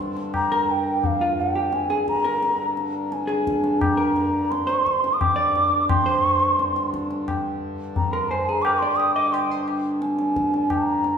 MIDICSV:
0, 0, Header, 1, 5, 480
1, 0, Start_track
1, 0, Tempo, 694444
1, 1670, Time_signature, 5, 2, 24, 8
1, 4546, Tempo, 686499
1, 7763, End_track
2, 0, Start_track
2, 0, Title_t, "Bansuri"
2, 0, Program_c, 0, 73
2, 246, Note_on_c, 0, 82, 83
2, 487, Note_on_c, 0, 79, 69
2, 497, Note_off_c, 0, 82, 0
2, 731, Note_on_c, 0, 77, 72
2, 741, Note_off_c, 0, 79, 0
2, 973, Note_on_c, 0, 79, 69
2, 984, Note_off_c, 0, 77, 0
2, 1204, Note_on_c, 0, 80, 73
2, 1215, Note_off_c, 0, 79, 0
2, 1437, Note_off_c, 0, 80, 0
2, 1443, Note_on_c, 0, 82, 86
2, 1889, Note_off_c, 0, 82, 0
2, 2113, Note_on_c, 0, 82, 51
2, 2162, Note_on_c, 0, 80, 57
2, 2173, Note_off_c, 0, 82, 0
2, 2629, Note_on_c, 0, 82, 69
2, 2639, Note_off_c, 0, 80, 0
2, 3114, Note_on_c, 0, 84, 86
2, 3124, Note_off_c, 0, 82, 0
2, 3548, Note_on_c, 0, 87, 61
2, 3559, Note_off_c, 0, 84, 0
2, 3587, Note_on_c, 0, 86, 82
2, 3597, Note_off_c, 0, 87, 0
2, 4066, Note_off_c, 0, 86, 0
2, 4070, Note_on_c, 0, 84, 93
2, 4759, Note_off_c, 0, 84, 0
2, 5517, Note_on_c, 0, 82, 74
2, 5628, Note_on_c, 0, 84, 72
2, 5639, Note_off_c, 0, 82, 0
2, 5749, Note_on_c, 0, 80, 64
2, 5760, Note_off_c, 0, 84, 0
2, 5859, Note_on_c, 0, 82, 72
2, 5870, Note_off_c, 0, 80, 0
2, 5974, Note_on_c, 0, 86, 80
2, 5984, Note_off_c, 0, 82, 0
2, 6094, Note_on_c, 0, 84, 75
2, 6104, Note_off_c, 0, 86, 0
2, 6211, Note_on_c, 0, 87, 80
2, 6221, Note_off_c, 0, 84, 0
2, 6340, Note_off_c, 0, 87, 0
2, 6344, Note_on_c, 0, 86, 85
2, 6468, Note_on_c, 0, 84, 74
2, 6479, Note_off_c, 0, 86, 0
2, 6588, Note_off_c, 0, 84, 0
2, 6951, Note_on_c, 0, 80, 57
2, 7428, Note_on_c, 0, 82, 67
2, 7439, Note_off_c, 0, 80, 0
2, 7763, Note_off_c, 0, 82, 0
2, 7763, End_track
3, 0, Start_track
3, 0, Title_t, "Hollow-body jazz guitar"
3, 0, Program_c, 1, 26
3, 0, Note_on_c, 1, 72, 46
3, 87, Note_off_c, 1, 72, 0
3, 358, Note_on_c, 1, 70, 58
3, 838, Note_on_c, 1, 65, 50
3, 848, Note_off_c, 1, 70, 0
3, 1072, Note_off_c, 1, 65, 0
3, 1074, Note_on_c, 1, 67, 46
3, 1311, Note_off_c, 1, 67, 0
3, 1314, Note_on_c, 1, 68, 46
3, 1551, Note_on_c, 1, 70, 51
3, 1559, Note_off_c, 1, 68, 0
3, 2004, Note_off_c, 1, 70, 0
3, 2263, Note_on_c, 1, 68, 47
3, 2747, Note_on_c, 1, 70, 51
3, 2761, Note_off_c, 1, 68, 0
3, 3225, Note_off_c, 1, 70, 0
3, 3228, Note_on_c, 1, 72, 63
3, 3701, Note_off_c, 1, 72, 0
3, 3704, Note_on_c, 1, 74, 64
3, 4185, Note_off_c, 1, 74, 0
3, 4188, Note_on_c, 1, 72, 51
3, 4879, Note_off_c, 1, 72, 0
3, 5632, Note_on_c, 1, 70, 50
3, 5754, Note_off_c, 1, 70, 0
3, 5757, Note_on_c, 1, 72, 48
3, 5865, Note_off_c, 1, 72, 0
3, 5881, Note_on_c, 1, 68, 47
3, 5998, Note_off_c, 1, 68, 0
3, 6003, Note_on_c, 1, 70, 50
3, 6117, Note_on_c, 1, 74, 52
3, 6119, Note_off_c, 1, 70, 0
3, 6348, Note_off_c, 1, 74, 0
3, 6351, Note_on_c, 1, 75, 56
3, 6480, Note_off_c, 1, 75, 0
3, 6480, Note_on_c, 1, 74, 53
3, 6598, Note_off_c, 1, 74, 0
3, 6598, Note_on_c, 1, 72, 47
3, 6713, Note_off_c, 1, 72, 0
3, 7763, End_track
4, 0, Start_track
4, 0, Title_t, "Harmonium"
4, 0, Program_c, 2, 20
4, 0, Note_on_c, 2, 43, 62
4, 0, Note_on_c, 2, 50, 58
4, 7763, Note_off_c, 2, 43, 0
4, 7763, Note_off_c, 2, 50, 0
4, 7763, End_track
5, 0, Start_track
5, 0, Title_t, "Tabla"
5, 115, Note_on_c, 9, 62, 47
5, 184, Note_off_c, 9, 62, 0
5, 234, Note_on_c, 9, 60, 60
5, 234, Note_on_c, 9, 64, 60
5, 303, Note_off_c, 9, 60, 0
5, 303, Note_off_c, 9, 64, 0
5, 716, Note_on_c, 9, 63, 67
5, 716, Note_on_c, 9, 64, 59
5, 785, Note_off_c, 9, 63, 0
5, 785, Note_off_c, 9, 64, 0
5, 1192, Note_on_c, 9, 62, 65
5, 1262, Note_off_c, 9, 62, 0
5, 1313, Note_on_c, 9, 62, 54
5, 1382, Note_off_c, 9, 62, 0
5, 1436, Note_on_c, 9, 37, 47
5, 1505, Note_off_c, 9, 37, 0
5, 1557, Note_on_c, 9, 62, 52
5, 1626, Note_off_c, 9, 62, 0
5, 1676, Note_on_c, 9, 62, 59
5, 1745, Note_off_c, 9, 62, 0
5, 1916, Note_on_c, 9, 62, 49
5, 1985, Note_off_c, 9, 62, 0
5, 2157, Note_on_c, 9, 62, 64
5, 2226, Note_off_c, 9, 62, 0
5, 2275, Note_on_c, 9, 62, 54
5, 2344, Note_off_c, 9, 62, 0
5, 2400, Note_on_c, 9, 37, 53
5, 2469, Note_off_c, 9, 37, 0
5, 2514, Note_on_c, 9, 62, 52
5, 2583, Note_off_c, 9, 62, 0
5, 2636, Note_on_c, 9, 60, 69
5, 2636, Note_on_c, 9, 64, 63
5, 2705, Note_off_c, 9, 60, 0
5, 2705, Note_off_c, 9, 64, 0
5, 2877, Note_on_c, 9, 62, 53
5, 2946, Note_off_c, 9, 62, 0
5, 3121, Note_on_c, 9, 62, 70
5, 3191, Note_off_c, 9, 62, 0
5, 3244, Note_on_c, 9, 62, 55
5, 3313, Note_off_c, 9, 62, 0
5, 3362, Note_on_c, 9, 37, 45
5, 3431, Note_off_c, 9, 37, 0
5, 3484, Note_on_c, 9, 62, 59
5, 3553, Note_off_c, 9, 62, 0
5, 3601, Note_on_c, 9, 60, 70
5, 3601, Note_on_c, 9, 64, 63
5, 3670, Note_off_c, 9, 60, 0
5, 3670, Note_off_c, 9, 64, 0
5, 3839, Note_on_c, 9, 62, 51
5, 3908, Note_off_c, 9, 62, 0
5, 4074, Note_on_c, 9, 60, 87
5, 4074, Note_on_c, 9, 64, 82
5, 4143, Note_off_c, 9, 60, 0
5, 4143, Note_off_c, 9, 64, 0
5, 4557, Note_on_c, 9, 62, 64
5, 4627, Note_off_c, 9, 62, 0
5, 4676, Note_on_c, 9, 62, 54
5, 4746, Note_off_c, 9, 62, 0
5, 4798, Note_on_c, 9, 37, 54
5, 4868, Note_off_c, 9, 37, 0
5, 4916, Note_on_c, 9, 62, 55
5, 4985, Note_off_c, 9, 62, 0
5, 5037, Note_on_c, 9, 60, 70
5, 5037, Note_on_c, 9, 64, 65
5, 5107, Note_off_c, 9, 60, 0
5, 5107, Note_off_c, 9, 64, 0
5, 5514, Note_on_c, 9, 63, 66
5, 5514, Note_on_c, 9, 64, 61
5, 5583, Note_off_c, 9, 63, 0
5, 5583, Note_off_c, 9, 64, 0
5, 5994, Note_on_c, 9, 60, 72
5, 6064, Note_off_c, 9, 60, 0
5, 6238, Note_on_c, 9, 60, 59
5, 6308, Note_off_c, 9, 60, 0
5, 6477, Note_on_c, 9, 60, 72
5, 6547, Note_off_c, 9, 60, 0
5, 6714, Note_on_c, 9, 60, 51
5, 6784, Note_off_c, 9, 60, 0
5, 6952, Note_on_c, 9, 62, 67
5, 7022, Note_off_c, 9, 62, 0
5, 7070, Note_on_c, 9, 62, 52
5, 7140, Note_off_c, 9, 62, 0
5, 7193, Note_on_c, 9, 37, 53
5, 7263, Note_off_c, 9, 37, 0
5, 7315, Note_on_c, 9, 62, 53
5, 7385, Note_off_c, 9, 62, 0
5, 7430, Note_on_c, 9, 60, 70
5, 7430, Note_on_c, 9, 64, 62
5, 7500, Note_off_c, 9, 60, 0
5, 7500, Note_off_c, 9, 64, 0
5, 7668, Note_on_c, 9, 62, 52
5, 7738, Note_off_c, 9, 62, 0
5, 7763, End_track
0, 0, End_of_file